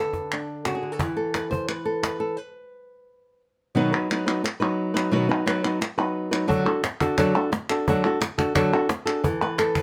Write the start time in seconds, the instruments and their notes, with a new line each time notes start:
Already playing: nylon-string guitar D3 A4 B4
0.13 cajon bass, cajon slap
0.32 nylon-string guitar D4, clap
0.65 nylon-string guitar C#3 F#4, cajon slap, clap
0.75 nylon-string guitar G#4
0.83 nylon-string guitar D3
0.92 nylon-string guitar A4
0.99 nylon-string guitar E3 B4, cajon bass
1.17 nylon-string guitar A4
1.34 nylon-string guitar B4, cajon slap, clap
1.51 nylon-string guitar C5, cajon bass
1.69 nylon-string guitar B4, clap
1.85 nylon-string guitar A4
2.03 nylon-string guitar B4, cajon slap, clap
2.20 nylon-string guitar A4
2.37 nylon-string guitar B4
3.75 nylon-string guitar B2 D#3 F#3 B3 D#4 B4
3.93 nylon-string guitar F#3 B3 D#4 B4
4.10 nylon-string guitar F#3 B3 D#4 B4, clap
4.26 nylon-string guitar F#3 B3 D#4 B4, clap
4.44 muted nylon-string guitar stroke, clap
4.60 nylon-string guitar F#3 B3 D#4 B4
4.94 nylon-string guitar F#3 B3 D#4 B4, clap
5.11 nylon-string guitar B2 D#3 F#3 B3 D#4 B4
5.29 nylon-string guitar F#3 B3 D#4 B4
5.46 nylon-string guitar F#3 B3 D#4 B4, clap
5.64 nylon-string guitar F#3 B3 D#4 B4, clap
5.81 muted nylon-string guitar stroke, clap
5.98 nylon-string guitar F#3 B3 D#4 B4, clap
6.31 nylon-string guitar F#3 B3 D#4 B4, clap
6.47 nylon-string guitar D3 F#3 D4 F#4 A4, cajon bass
6.65 nylon-string guitar D4 F#4 A4, cajon slap
6.83 muted nylon-string guitar stroke, cajon slap, clap
7.00 nylon-string guitar D4 F#4 A4, cajon bass, clap
7.17 nylon-string guitar D3 F#3 D4 F#4 A4, cajon bass, clap
7.35 nylon-string guitar D4 F#4 A4
7.52 muted nylon-string guitar stroke, cajon slap
7.69 nylon-string guitar D4 F#4 A4, clap
7.88 nylon-string guitar D3 F#3 D4 F#4 A4, cajon bass
8.05 nylon-string guitar D4 F#4 A4, cajon slap
8.20 muted nylon-string guitar stroke, cajon slap, clap
8.38 nylon-string guitar D4 F#4 A4, cajon bass, clap
8.55 nylon-string guitar D3 F#3 D4 F#4 A4, cajon bass, clap
8.73 nylon-string guitar D4 F#4 A4
8.89 muted nylon-string guitar stroke, cajon slap
9.06 nylon-string guitar D4 F#4 G#4 A4, clap
9.24 nylon-string guitar E3 A4, cajon bass
9.42 nylon-string guitar B4, cajon slap
9.58 nylon-string guitar A4, cajon slap, clap
9.75 nylon-string guitar B4, cajon bass, clap